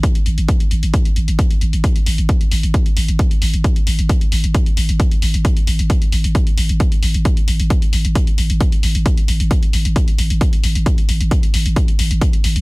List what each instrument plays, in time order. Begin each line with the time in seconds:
0.03 kick, closed hi-hat
0.15 closed hi-hat
0.26 808-style bass G#1, closed hi-hat
0.38 808-style bass G#1, closed hi-hat
0.49 kick, closed hi-hat
0.60 closed hi-hat
0.71 808-style bass G#1, closed hi-hat
0.83 808-style bass G#1, closed hi-hat
0.94 kick, closed hi-hat
1.05 closed hi-hat
1.16 808-style bass G#1, closed hi-hat
1.28 808-style bass G#1, closed hi-hat
1.39 kick, closed hi-hat
1.51 closed hi-hat
1.61 808-style bass G#1, closed hi-hat
1.73 808-style bass G#1, closed hi-hat
1.84 kick, closed hi-hat
1.96 closed hi-hat
2.06 808-style bass G#1, open hi-hat
2.18 808-style bass G#1, closed hi-hat
2.29 kick, closed hi-hat
2.41 closed hi-hat
2.52 808-style bass G#1, open hi-hat
2.63 808-style bass G#1, closed hi-hat
2.74 kick, closed hi-hat
2.86 closed hi-hat
2.97 808-style bass G#1, open hi-hat
3.08 808-style bass G#1, closed hi-hat
3.19 kick, closed hi-hat
3.31 closed hi-hat
3.42 808-style bass G#1, open hi-hat
3.54 808-style bass G#1, closed hi-hat
3.64 kick, closed hi-hat
3.76 closed hi-hat
3.87 808-style bass G#1, open hi-hat
3.99 808-style bass G#1, closed hi-hat
4.09 kick, closed hi-hat
4.21 closed hi-hat
4.32 808-style bass G#1, open hi-hat
4.44 808-style bass G#1, closed hi-hat
4.55 kick, closed hi-hat
4.66 closed hi-hat
4.77 808-style bass G#1, open hi-hat
4.89 808-style bass G#1, closed hi-hat
5.00 kick, closed hi-hat
5.11 closed hi-hat
5.22 808-style bass G#1, open hi-hat
5.34 808-style bass G#1, closed hi-hat
5.45 kick, closed hi-hat
5.57 closed hi-hat
5.67 808-style bass G#1, open hi-hat
5.79 808-style bass G#1, closed hi-hat
5.90 kick, closed hi-hat
6.02 closed hi-hat
6.12 808-style bass G#1, open hi-hat
6.24 808-style bass G#1, closed hi-hat
6.35 kick, closed hi-hat
6.47 closed hi-hat
6.58 808-style bass G#1, open hi-hat
6.69 808-style bass G#1, closed hi-hat
6.80 kick, closed hi-hat
6.92 closed hi-hat
7.03 808-style bass G#1, open hi-hat
7.14 808-style bass G#1, closed hi-hat
7.25 kick, closed hi-hat
7.37 closed hi-hat
7.48 808-style bass G#1, open hi-hat
7.60 808-style bass G#1, closed hi-hat
7.70 kick, closed hi-hat
7.82 closed hi-hat
7.93 808-style bass G#1, open hi-hat
8.05 808-style bass G#1, closed hi-hat
8.15 kick, closed hi-hat
8.27 closed hi-hat
8.38 808-style bass G#1, open hi-hat
8.50 808-style bass G#1, closed hi-hat
8.61 kick, closed hi-hat
8.72 closed hi-hat
8.83 808-style bass G#1, open hi-hat
8.95 808-style bass G#1, closed hi-hat
9.06 kick, closed hi-hat
9.18 closed hi-hat
9.28 808-style bass G#1, open hi-hat
9.40 808-style bass G#1, closed hi-hat
9.51 kick, closed hi-hat
9.63 closed hi-hat
9.73 808-style bass G#1, open hi-hat
9.85 808-style bass G#1, closed hi-hat
9.96 kick, closed hi-hat
10.08 closed hi-hat
10.18 808-style bass G#1, open hi-hat
10.30 808-style bass G#1, closed hi-hat
10.41 kick, closed hi-hat
10.53 closed hi-hat
10.64 808-style bass G#1, open hi-hat
10.75 808-style bass G#1, closed hi-hat
10.86 kick, closed hi-hat
10.98 closed hi-hat
11.09 808-style bass G#1, open hi-hat
11.21 808-style bass G#1, closed hi-hat
11.31 kick, closed hi-hat
11.43 closed hi-hat
11.54 808-style bass G#1, open hi-hat
11.66 808-style bass G#1, closed hi-hat
11.76 kick, closed hi-hat
11.88 closed hi-hat
11.99 808-style bass G#1, open hi-hat
12.11 808-style bass G#1, closed hi-hat
12.21 kick, closed hi-hat
12.33 closed hi-hat
12.44 808-style bass G#1, open hi-hat
12.56 808-style bass G#1, closed hi-hat